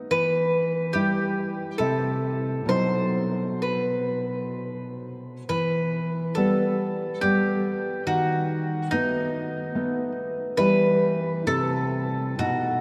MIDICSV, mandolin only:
0, 0, Header, 1, 2, 480
1, 0, Start_track
1, 0, Key_signature, 1, "minor"
1, 0, Tempo, 846262
1, 64, Time_signature, 3, 2, 24, 8
1, 1024, Tempo, 896861
1, 1504, Tempo, 930233
1, 2944, Tempo, 869565
1, 3904, Tempo, 837989
1, 5824, Tempo, 887574
1, 6304, Tempo, 933126
1, 6991, End_track
2, 0, Start_track
2, 0, Title_t, "Mandolin"
2, 0, Program_c, 0, 25
2, 62, Note_on_c, 0, 71, 51
2, 515, Note_off_c, 0, 71, 0
2, 528, Note_on_c, 0, 67, 43
2, 996, Note_off_c, 0, 67, 0
2, 1011, Note_on_c, 0, 69, 43
2, 1476, Note_off_c, 0, 69, 0
2, 1497, Note_on_c, 0, 72, 42
2, 1959, Note_off_c, 0, 72, 0
2, 1977, Note_on_c, 0, 71, 30
2, 2684, Note_off_c, 0, 71, 0
2, 2943, Note_on_c, 0, 71, 45
2, 3406, Note_off_c, 0, 71, 0
2, 3417, Note_on_c, 0, 69, 41
2, 3876, Note_off_c, 0, 69, 0
2, 3894, Note_on_c, 0, 67, 45
2, 4359, Note_off_c, 0, 67, 0
2, 4383, Note_on_c, 0, 66, 46
2, 4844, Note_off_c, 0, 66, 0
2, 4865, Note_on_c, 0, 63, 44
2, 5556, Note_off_c, 0, 63, 0
2, 5818, Note_on_c, 0, 71, 53
2, 6279, Note_off_c, 0, 71, 0
2, 6303, Note_on_c, 0, 69, 50
2, 6755, Note_off_c, 0, 69, 0
2, 6776, Note_on_c, 0, 66, 42
2, 6991, Note_off_c, 0, 66, 0
2, 6991, End_track
0, 0, End_of_file